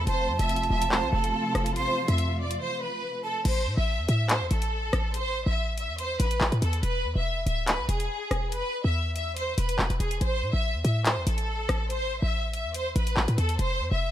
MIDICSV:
0, 0, Header, 1, 6, 480
1, 0, Start_track
1, 0, Key_signature, 0, "minor"
1, 0, Tempo, 422535
1, 81, Time_signature, 4, 2, 24, 8
1, 16032, End_track
2, 0, Start_track
2, 0, Title_t, "Flute"
2, 0, Program_c, 0, 73
2, 80, Note_on_c, 0, 81, 127
2, 1955, Note_off_c, 0, 81, 0
2, 2001, Note_on_c, 0, 84, 119
2, 2452, Note_off_c, 0, 84, 0
2, 3680, Note_on_c, 0, 81, 92
2, 3908, Note_off_c, 0, 81, 0
2, 16032, End_track
3, 0, Start_track
3, 0, Title_t, "Violin section"
3, 0, Program_c, 1, 48
3, 80, Note_on_c, 1, 72, 114
3, 425, Note_off_c, 1, 72, 0
3, 446, Note_on_c, 1, 76, 86
3, 778, Note_off_c, 1, 76, 0
3, 799, Note_on_c, 1, 76, 85
3, 1017, Note_off_c, 1, 76, 0
3, 1039, Note_on_c, 1, 72, 88
3, 1257, Note_off_c, 1, 72, 0
3, 1280, Note_on_c, 1, 69, 85
3, 1957, Note_off_c, 1, 69, 0
3, 2001, Note_on_c, 1, 72, 113
3, 2346, Note_off_c, 1, 72, 0
3, 2367, Note_on_c, 1, 76, 84
3, 2699, Note_off_c, 1, 76, 0
3, 2721, Note_on_c, 1, 74, 83
3, 2938, Note_off_c, 1, 74, 0
3, 2962, Note_on_c, 1, 72, 101
3, 3178, Note_off_c, 1, 72, 0
3, 3201, Note_on_c, 1, 71, 86
3, 3652, Note_off_c, 1, 71, 0
3, 3682, Note_on_c, 1, 69, 82
3, 3898, Note_off_c, 1, 69, 0
3, 3921, Note_on_c, 1, 72, 96
3, 4266, Note_off_c, 1, 72, 0
3, 4288, Note_on_c, 1, 76, 85
3, 4619, Note_off_c, 1, 76, 0
3, 4640, Note_on_c, 1, 76, 82
3, 4858, Note_off_c, 1, 76, 0
3, 4880, Note_on_c, 1, 72, 89
3, 5098, Note_off_c, 1, 72, 0
3, 5120, Note_on_c, 1, 69, 81
3, 5797, Note_off_c, 1, 69, 0
3, 5840, Note_on_c, 1, 72, 112
3, 6186, Note_off_c, 1, 72, 0
3, 6206, Note_on_c, 1, 76, 80
3, 6538, Note_off_c, 1, 76, 0
3, 6561, Note_on_c, 1, 76, 78
3, 6778, Note_off_c, 1, 76, 0
3, 6799, Note_on_c, 1, 72, 104
3, 7017, Note_off_c, 1, 72, 0
3, 7040, Note_on_c, 1, 71, 90
3, 7491, Note_off_c, 1, 71, 0
3, 7521, Note_on_c, 1, 69, 85
3, 7738, Note_off_c, 1, 69, 0
3, 7761, Note_on_c, 1, 71, 105
3, 8106, Note_off_c, 1, 71, 0
3, 8130, Note_on_c, 1, 76, 84
3, 8460, Note_off_c, 1, 76, 0
3, 8481, Note_on_c, 1, 76, 82
3, 8698, Note_off_c, 1, 76, 0
3, 8721, Note_on_c, 1, 71, 94
3, 8938, Note_off_c, 1, 71, 0
3, 8961, Note_on_c, 1, 68, 86
3, 9637, Note_off_c, 1, 68, 0
3, 9680, Note_on_c, 1, 71, 108
3, 10025, Note_off_c, 1, 71, 0
3, 10047, Note_on_c, 1, 76, 83
3, 10379, Note_off_c, 1, 76, 0
3, 10400, Note_on_c, 1, 76, 81
3, 10618, Note_off_c, 1, 76, 0
3, 10640, Note_on_c, 1, 72, 99
3, 10857, Note_off_c, 1, 72, 0
3, 10880, Note_on_c, 1, 71, 87
3, 11332, Note_off_c, 1, 71, 0
3, 11361, Note_on_c, 1, 68, 80
3, 11578, Note_off_c, 1, 68, 0
3, 11600, Note_on_c, 1, 72, 110
3, 11945, Note_off_c, 1, 72, 0
3, 11966, Note_on_c, 1, 76, 89
3, 12298, Note_off_c, 1, 76, 0
3, 12321, Note_on_c, 1, 76, 75
3, 12538, Note_off_c, 1, 76, 0
3, 12561, Note_on_c, 1, 72, 90
3, 12778, Note_off_c, 1, 72, 0
3, 12800, Note_on_c, 1, 69, 83
3, 13477, Note_off_c, 1, 69, 0
3, 13519, Note_on_c, 1, 72, 111
3, 13865, Note_off_c, 1, 72, 0
3, 13887, Note_on_c, 1, 76, 87
3, 14219, Note_off_c, 1, 76, 0
3, 14239, Note_on_c, 1, 76, 74
3, 14457, Note_off_c, 1, 76, 0
3, 14479, Note_on_c, 1, 72, 100
3, 14697, Note_off_c, 1, 72, 0
3, 14718, Note_on_c, 1, 71, 91
3, 15170, Note_off_c, 1, 71, 0
3, 15200, Note_on_c, 1, 69, 89
3, 15418, Note_off_c, 1, 69, 0
3, 15439, Note_on_c, 1, 72, 110
3, 15785, Note_off_c, 1, 72, 0
3, 15806, Note_on_c, 1, 76, 88
3, 16032, Note_off_c, 1, 76, 0
3, 16032, End_track
4, 0, Start_track
4, 0, Title_t, "String section"
4, 0, Program_c, 2, 48
4, 79, Note_on_c, 2, 65, 94
4, 80, Note_on_c, 2, 48, 82
4, 80, Note_on_c, 2, 53, 77
4, 80, Note_on_c, 2, 57, 74
4, 3881, Note_off_c, 2, 48, 0
4, 3881, Note_off_c, 2, 57, 0
4, 3881, Note_off_c, 2, 65, 0
4, 3882, Note_off_c, 2, 53, 0
4, 16032, End_track
5, 0, Start_track
5, 0, Title_t, "808-style bass"
5, 0, Program_c, 3, 38
5, 79, Note_on_c, 3, 29, 109
5, 320, Note_on_c, 3, 41, 103
5, 337, Note_off_c, 3, 29, 0
5, 441, Note_off_c, 3, 41, 0
5, 447, Note_on_c, 3, 29, 109
5, 786, Note_off_c, 3, 29, 0
5, 799, Note_on_c, 3, 28, 114
5, 1166, Note_on_c, 3, 36, 100
5, 1183, Note_off_c, 3, 28, 0
5, 1274, Note_off_c, 3, 36, 0
5, 1280, Note_on_c, 3, 29, 110
5, 1510, Note_off_c, 3, 29, 0
5, 1759, Note_on_c, 3, 29, 111
5, 1999, Note_on_c, 3, 32, 99
5, 2016, Note_off_c, 3, 29, 0
5, 2121, Note_off_c, 3, 32, 0
5, 2367, Note_on_c, 3, 41, 105
5, 2936, Note_off_c, 3, 41, 0
5, 3920, Note_on_c, 3, 33, 102
5, 4161, Note_on_c, 3, 45, 101
5, 4178, Note_off_c, 3, 33, 0
5, 4281, Note_off_c, 3, 45, 0
5, 4288, Note_on_c, 3, 33, 109
5, 4528, Note_on_c, 3, 40, 98
5, 4545, Note_off_c, 3, 33, 0
5, 4635, Note_off_c, 3, 40, 0
5, 4641, Note_on_c, 3, 45, 107
5, 5009, Note_on_c, 3, 40, 100
5, 5026, Note_off_c, 3, 45, 0
5, 5115, Note_off_c, 3, 40, 0
5, 5122, Note_on_c, 3, 33, 108
5, 5582, Note_off_c, 3, 33, 0
5, 5601, Note_on_c, 3, 33, 109
5, 5968, Note_on_c, 3, 32, 98
5, 5985, Note_off_c, 3, 33, 0
5, 6080, Note_on_c, 3, 33, 101
5, 6097, Note_off_c, 3, 32, 0
5, 6201, Note_off_c, 3, 33, 0
5, 6207, Note_on_c, 3, 33, 108
5, 6686, Note_on_c, 3, 40, 99
5, 6704, Note_off_c, 3, 33, 0
5, 7022, Note_off_c, 3, 40, 0
5, 7040, Note_on_c, 3, 33, 111
5, 7271, Note_off_c, 3, 33, 0
5, 7280, Note_on_c, 3, 33, 105
5, 7402, Note_off_c, 3, 33, 0
5, 7408, Note_on_c, 3, 45, 107
5, 7516, Note_off_c, 3, 45, 0
5, 7521, Note_on_c, 3, 40, 108
5, 7751, Note_off_c, 3, 40, 0
5, 7759, Note_on_c, 3, 28, 107
5, 8001, Note_on_c, 3, 40, 103
5, 8018, Note_off_c, 3, 28, 0
5, 8121, Note_off_c, 3, 40, 0
5, 8128, Note_on_c, 3, 28, 104
5, 8466, Note_off_c, 3, 28, 0
5, 8480, Note_on_c, 3, 26, 112
5, 8846, Note_on_c, 3, 35, 98
5, 8863, Note_off_c, 3, 26, 0
5, 8954, Note_off_c, 3, 35, 0
5, 8959, Note_on_c, 3, 28, 105
5, 9190, Note_off_c, 3, 28, 0
5, 9439, Note_on_c, 3, 28, 108
5, 9679, Note_on_c, 3, 29, 96
5, 9696, Note_off_c, 3, 28, 0
5, 9801, Note_off_c, 3, 29, 0
5, 10047, Note_on_c, 3, 40, 101
5, 10847, Note_off_c, 3, 40, 0
5, 10880, Note_on_c, 3, 28, 108
5, 11111, Note_off_c, 3, 28, 0
5, 11120, Note_on_c, 3, 28, 104
5, 11240, Note_off_c, 3, 28, 0
5, 11247, Note_on_c, 3, 28, 103
5, 11352, Note_off_c, 3, 28, 0
5, 11359, Note_on_c, 3, 28, 104
5, 11590, Note_off_c, 3, 28, 0
5, 11599, Note_on_c, 3, 33, 105
5, 11840, Note_on_c, 3, 45, 100
5, 11857, Note_off_c, 3, 33, 0
5, 11961, Note_off_c, 3, 45, 0
5, 11967, Note_on_c, 3, 33, 105
5, 12207, Note_on_c, 3, 40, 100
5, 12224, Note_off_c, 3, 33, 0
5, 12314, Note_off_c, 3, 40, 0
5, 12320, Note_on_c, 3, 45, 106
5, 12687, Note_on_c, 3, 40, 101
5, 12704, Note_off_c, 3, 45, 0
5, 12795, Note_off_c, 3, 40, 0
5, 12799, Note_on_c, 3, 33, 109
5, 13261, Note_off_c, 3, 33, 0
5, 13280, Note_on_c, 3, 33, 106
5, 13647, Note_on_c, 3, 32, 101
5, 13664, Note_off_c, 3, 33, 0
5, 13760, Note_on_c, 3, 33, 100
5, 13777, Note_off_c, 3, 32, 0
5, 13881, Note_off_c, 3, 33, 0
5, 13887, Note_on_c, 3, 33, 109
5, 14367, Note_on_c, 3, 40, 104
5, 14384, Note_off_c, 3, 33, 0
5, 14702, Note_off_c, 3, 40, 0
5, 14719, Note_on_c, 3, 33, 110
5, 14950, Note_off_c, 3, 33, 0
5, 14960, Note_on_c, 3, 33, 106
5, 15080, Note_off_c, 3, 33, 0
5, 15087, Note_on_c, 3, 45, 104
5, 15193, Note_off_c, 3, 45, 0
5, 15199, Note_on_c, 3, 40, 107
5, 15430, Note_off_c, 3, 40, 0
5, 15439, Note_on_c, 3, 29, 103
5, 15680, Note_on_c, 3, 41, 98
5, 15697, Note_off_c, 3, 29, 0
5, 15801, Note_off_c, 3, 41, 0
5, 15807, Note_on_c, 3, 29, 106
5, 16032, Note_off_c, 3, 29, 0
5, 16032, End_track
6, 0, Start_track
6, 0, Title_t, "Drums"
6, 80, Note_on_c, 9, 42, 79
6, 194, Note_off_c, 9, 42, 0
6, 447, Note_on_c, 9, 42, 72
6, 561, Note_off_c, 9, 42, 0
6, 561, Note_on_c, 9, 42, 77
6, 640, Note_off_c, 9, 42, 0
6, 640, Note_on_c, 9, 42, 62
6, 721, Note_off_c, 9, 42, 0
6, 721, Note_on_c, 9, 42, 44
6, 834, Note_off_c, 9, 42, 0
6, 927, Note_on_c, 9, 42, 86
6, 1041, Note_off_c, 9, 42, 0
6, 1041, Note_on_c, 9, 39, 114
6, 1155, Note_off_c, 9, 39, 0
6, 1407, Note_on_c, 9, 42, 73
6, 1520, Note_off_c, 9, 42, 0
6, 1760, Note_on_c, 9, 37, 102
6, 1762, Note_on_c, 9, 42, 88
6, 1874, Note_off_c, 9, 37, 0
6, 1875, Note_off_c, 9, 42, 0
6, 1885, Note_on_c, 9, 42, 83
6, 1999, Note_off_c, 9, 42, 0
6, 2000, Note_on_c, 9, 42, 75
6, 2113, Note_off_c, 9, 42, 0
6, 2366, Note_on_c, 9, 42, 70
6, 2480, Note_off_c, 9, 42, 0
6, 2480, Note_on_c, 9, 42, 76
6, 2593, Note_off_c, 9, 42, 0
6, 2848, Note_on_c, 9, 42, 86
6, 2961, Note_off_c, 9, 42, 0
6, 3920, Note_on_c, 9, 42, 74
6, 3920, Note_on_c, 9, 49, 93
6, 4034, Note_off_c, 9, 42, 0
6, 4034, Note_off_c, 9, 49, 0
6, 4641, Note_on_c, 9, 42, 74
6, 4754, Note_off_c, 9, 42, 0
6, 4878, Note_on_c, 9, 42, 85
6, 4881, Note_on_c, 9, 39, 107
6, 4992, Note_off_c, 9, 42, 0
6, 4995, Note_off_c, 9, 39, 0
6, 5120, Note_on_c, 9, 42, 91
6, 5233, Note_off_c, 9, 42, 0
6, 5247, Note_on_c, 9, 42, 70
6, 5360, Note_off_c, 9, 42, 0
6, 5600, Note_on_c, 9, 37, 97
6, 5602, Note_on_c, 9, 42, 83
6, 5714, Note_off_c, 9, 37, 0
6, 5715, Note_off_c, 9, 42, 0
6, 5840, Note_on_c, 9, 42, 76
6, 5953, Note_off_c, 9, 42, 0
6, 6561, Note_on_c, 9, 42, 70
6, 6675, Note_off_c, 9, 42, 0
6, 6799, Note_on_c, 9, 42, 82
6, 6913, Note_off_c, 9, 42, 0
6, 7040, Note_on_c, 9, 42, 88
6, 7154, Note_off_c, 9, 42, 0
6, 7167, Note_on_c, 9, 42, 70
6, 7281, Note_off_c, 9, 42, 0
6, 7281, Note_on_c, 9, 39, 119
6, 7395, Note_off_c, 9, 39, 0
6, 7408, Note_on_c, 9, 42, 72
6, 7522, Note_off_c, 9, 42, 0
6, 7522, Note_on_c, 9, 42, 86
6, 7635, Note_off_c, 9, 42, 0
6, 7646, Note_on_c, 9, 42, 84
6, 7759, Note_off_c, 9, 42, 0
6, 7760, Note_on_c, 9, 42, 77
6, 7874, Note_off_c, 9, 42, 0
6, 8481, Note_on_c, 9, 42, 74
6, 8595, Note_off_c, 9, 42, 0
6, 8719, Note_on_c, 9, 42, 85
6, 8722, Note_on_c, 9, 39, 107
6, 8832, Note_off_c, 9, 42, 0
6, 8835, Note_off_c, 9, 39, 0
6, 8961, Note_on_c, 9, 42, 93
6, 9074, Note_off_c, 9, 42, 0
6, 9087, Note_on_c, 9, 42, 71
6, 9201, Note_off_c, 9, 42, 0
6, 9440, Note_on_c, 9, 37, 101
6, 9442, Note_on_c, 9, 42, 84
6, 9554, Note_off_c, 9, 37, 0
6, 9555, Note_off_c, 9, 42, 0
6, 9680, Note_on_c, 9, 42, 79
6, 9793, Note_off_c, 9, 42, 0
6, 10402, Note_on_c, 9, 42, 72
6, 10515, Note_off_c, 9, 42, 0
6, 10639, Note_on_c, 9, 42, 82
6, 10753, Note_off_c, 9, 42, 0
6, 10880, Note_on_c, 9, 42, 89
6, 10994, Note_off_c, 9, 42, 0
6, 11007, Note_on_c, 9, 42, 71
6, 11120, Note_off_c, 9, 42, 0
6, 11121, Note_on_c, 9, 39, 117
6, 11235, Note_off_c, 9, 39, 0
6, 11248, Note_on_c, 9, 42, 70
6, 11362, Note_off_c, 9, 42, 0
6, 11362, Note_on_c, 9, 42, 84
6, 11475, Note_off_c, 9, 42, 0
6, 11485, Note_on_c, 9, 42, 78
6, 11599, Note_off_c, 9, 42, 0
6, 11600, Note_on_c, 9, 42, 74
6, 11713, Note_off_c, 9, 42, 0
6, 12321, Note_on_c, 9, 42, 73
6, 12434, Note_off_c, 9, 42, 0
6, 12559, Note_on_c, 9, 42, 81
6, 12561, Note_on_c, 9, 39, 105
6, 12672, Note_off_c, 9, 42, 0
6, 12675, Note_off_c, 9, 39, 0
6, 12800, Note_on_c, 9, 42, 91
6, 12913, Note_off_c, 9, 42, 0
6, 12927, Note_on_c, 9, 42, 71
6, 13040, Note_off_c, 9, 42, 0
6, 13280, Note_on_c, 9, 37, 98
6, 13281, Note_on_c, 9, 42, 84
6, 13393, Note_off_c, 9, 37, 0
6, 13395, Note_off_c, 9, 42, 0
6, 13519, Note_on_c, 9, 42, 76
6, 13633, Note_off_c, 9, 42, 0
6, 14240, Note_on_c, 9, 42, 74
6, 14354, Note_off_c, 9, 42, 0
6, 14478, Note_on_c, 9, 42, 85
6, 14592, Note_off_c, 9, 42, 0
6, 14720, Note_on_c, 9, 42, 89
6, 14833, Note_off_c, 9, 42, 0
6, 14847, Note_on_c, 9, 42, 68
6, 14960, Note_off_c, 9, 42, 0
6, 14960, Note_on_c, 9, 39, 117
6, 15073, Note_off_c, 9, 39, 0
6, 15087, Note_on_c, 9, 42, 72
6, 15200, Note_off_c, 9, 42, 0
6, 15200, Note_on_c, 9, 42, 86
6, 15314, Note_off_c, 9, 42, 0
6, 15324, Note_on_c, 9, 42, 81
6, 15438, Note_off_c, 9, 42, 0
6, 15439, Note_on_c, 9, 42, 77
6, 15553, Note_off_c, 9, 42, 0
6, 16032, End_track
0, 0, End_of_file